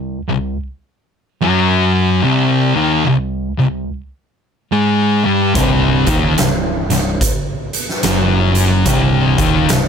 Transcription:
Already playing: C2
0.29 C2
1.42 F#2 F#3
2.23 C2 C3
2.74 D#2 D#3
3.06 C2
3.58 C2
4.72 G#2 G#3
5.24 G2 G3
5.55 C1 C2 C3, kick, closed hi-hat
6.07 D#1 D#2 D#3, kick, closed hi-hat
6.38 C1 C2, snare, closed hi-hat
6.90 C1 C2, snare, closed hi-hat
7.21 kick, closed hi-hat
7.73 closed hi-hat
7.89 snare
8.03 F#1 F#2 F#3, snare, closed hi-hat
8.55 closed hi-hat
8.86 C1 C2 C3, kick, closed hi-hat
9.38 D#1 D#2 D#3, kick, closed hi-hat
9.69 C1 C2, snare, closed hi-hat

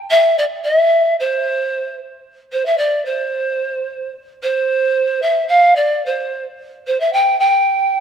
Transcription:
0.10 E5
0.38 D5
0.64 E5
1.19 C5
2.52 C5
2.65 E5
2.77 D5
3.05 C5
4.42 C5
5.22 E5
5.48 F5
5.75 D5
6.05 C5
6.87 C5
7.00 E5
7.13 G5
7.39 G5

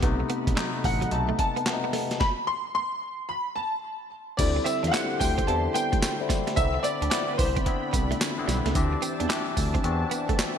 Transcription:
0.02 B1 C3 A3 B3 D#4 A4 D#5 B5, kick, closed hi-hat
0.20 muted clean electric guitar stroke
0.30 B3, closed hi-hat
0.47 B1, kick, closed hi-hat
0.57 C3 F#3 A3 B3 D#4, snare, clap, closed hi-hat
0.84 A1 F#5, muted clean electric guitar stroke, kick, open hi-hat
1.01 F#3, closed hi-hat
1.11 B1 C3 A3 B3 D#4 A5, closed hi-hat
1.29 A3
1.39 A5, muted clean electric guitar stroke, kick, closed hi-hat
1.56 B3, closed hi-hat
1.65 C3 A3 B3 C4, muted clean electric guitar stroke, snare, clap, closed hi-hat
1.73 D#4
1.84 B3
1.93 A3, snare, open hi-hat
2.11 snare, closed hi-hat
2.20 B5, kick, snare
2.47 C6
2.75 C6
3.29 B5
3.56 A5
4.37 D2 D3 G3 C4 D4 E4 G4 D5 E5 C6, kick, closed hi-hat, crash, tambourine
4.56 muted clean electric guitar stroke
4.64 C4 E5, closed hi-hat, tambourine
4.83 E2 D4, closed hi-hat
4.87 F5
4.91 D3 G3 C4 E4 F#5, snare, clap, closed hi-hat, tambourine
5.20 D2 G5, muted clean electric guitar stroke, kick, open hi-hat, tambourine
5.38 C4, kick, closed hi-hat
5.47 E2 D3 G3 C4 E4 A5, muted clean electric guitar stroke, closed hi-hat
5.74 B3 G5, closed hi-hat, tambourine
5.92 A3, kick, closed hi-hat
6.02 muted clean electric guitar stroke, snare, clap, closed hi-hat, tambourine
6.20 D3 G3 C4 E4
6.29 G3, kick, snare, closed hi-hat, tambourine
6.47 A3, snare, closed hi-hat
6.56 C2 D3 B3 C4 D#4 D5 E5 B5, kick, closed hi-hat, tambourine
6.64 E4
6.74 muted clean electric guitar stroke
6.80 D5 E5
6.84 C4, closed hi-hat, tambourine
7.02 D2 D4, closed hi-hat
7.10 D3 B3 C4 E4 D5, snare, clap, closed hi-hat, tambourine
7.33 B4
7.38 C2 C5, muted clean electric guitar stroke, kick, open hi-hat, tambourine
7.56 C4, kick, closed hi-hat
7.66 D3 B3 C4 E4, muted clean electric guitar stroke, kick, closed hi-hat
7.93 C2 B3, kick, closed hi-hat, tambourine
8.11 A3, closed hi-hat
8.20 muted clean electric guitar stroke, snare, clap, closed hi-hat, tambourine
8.38 D3 B3 C4 E4
8.48 B1 G3, snare, closed hi-hat, tambourine
8.66 C#2 A3, snare, closed hi-hat
8.74 D2 E3 C4 D4 G4 A5, kick, closed hi-hat, tambourine
8.93 muted clean electric guitar stroke
9.02 C4, closed hi-hat, tambourine
9.20 E2 D4, closed hi-hat
9.29 E3 C4 D4 E4 G4, snare, clap, closed hi-hat, tambourine
9.57 D2, muted clean electric guitar stroke, kick, open hi-hat, tambourine
9.74 C4, kick, closed hi-hat
9.84 E2 E3 C4 D4 F#4, muted clean electric guitar stroke, closed hi-hat
10.11 B3, closed hi-hat, tambourine
10.29 A3, kick, closed hi-hat
10.39 muted clean electric guitar stroke, snare, clap, closed hi-hat, tambourine

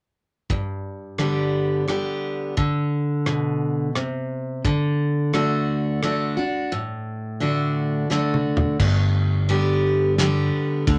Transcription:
0.50 G2, kick
1.18 D3 G3 B3 G4, cross-stick
1.88 D3 G3 B3 G4, cross-stick
2.57 D3, kick
3.26 B2, cross-stick
3.95 C3, cross-stick
4.65 D3, kick
5.33 D3 A3 D4 F#4, cross-stick
6.02 D3 A3 D4 F#4, cross-stick
6.37 D4 F#4
6.72 A2
7.40 D3 A3 D4 F#4
8.10 D3 A3 D4 F#4, snare
8.34 mid tom
8.57 floor tom
8.80 G1 G2, kick, crash
9.49 D3 G3 B3 G4, ride
10.18 D3 G3 B3 G4, snare, ride
10.87 D2 D3, kick, ride

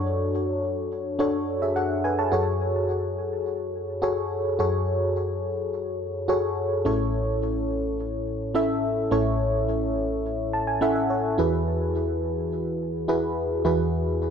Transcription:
Already playing: F#2 D4 F#4 A4 C#5
1.19 D4 F#4 A4 C#5
1.62 G#4 E5
1.76 A4 F#5
2.04 B4 G#5
2.19 C#5 A5
2.32 F#2 F#4 G#4 A4 C#5
4.02 F#4 G#4 A4 C#5
4.59 F#2 F#4 G#4 A4 C#5
6.28 F#4 G#4 A4 C#5
6.85 A1 A2 C#4 E4 A4 C#5
8.54 C#4 E4 A4 E5
9.11 A1 A2 C#4 E4 A4 C#5
10.53 A5
10.67 G#5
10.81 C#4 E4 A4 E5 F#5
10.96 E5
11.10 C#5
11.38 E2 E3 E4 F#4 G#4 B4
13.08 E4 F#4 G#4 B4
13.65 E2 E3 E4 F#4 G#4 B4

